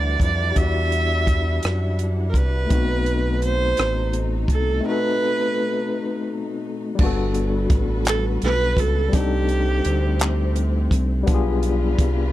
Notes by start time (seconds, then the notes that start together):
Already playing: D2 E3 G3 D4 E4 F#4 B4 D5 F#5
0.20 F2 D5, kick, closed hi-hat
0.51 D4 G4
0.56 E2 E4 F#4 E5, kick, closed hi-hat
0.63 D5
0.92 closed hi-hat
1.27 kick, closed hi-hat
1.63 F#2, cross-stick, closed hi-hat
1.99 closed hi-hat
2.30 A#4
2.34 C2 B4, kick, closed hi-hat
2.66 B2 A3 C4 D#4
2.70 B1 D#4, kick, closed hi-hat
2.75 B3 F#4
3.06 closed hi-hat
3.42 C5, closed hi-hat
3.77 A1, cross-stick, closed hi-hat
4.13 closed hi-hat
4.48 C2 A4, kick, closed hi-hat
4.81 A3 C4
4.86 D#4 F#4 B4
4.92 A4
6.95 G3 A#3 F#4 B4, kick, crash
6.99 G1 D4 A4
7.03 B3 F#4 A4
7.34 closed hi-hat
7.70 A1, kick, closed hi-hat
8.05 A4, clap, closed hi-hat
8.42 B1 B4, closed hi-hat
8.77 C#2 A4, kick, closed hi-hat
9.09 G3 C4, closed hi-hat
9.13 C2 C3 A3 D4 G4, kick
9.17 D#4 A4
9.49 closed hi-hat
9.85 D2, closed hi-hat
10.20 clap, closed hi-hat
10.56 closed hi-hat
10.91 C2, kick, closed hi-hat
11.23 G3 B3
11.27 B1 G3 D4 F4 B4, kick, closed hi-hat
11.32 F4 G#4
11.63 closed hi-hat
11.99 C2, kick, closed hi-hat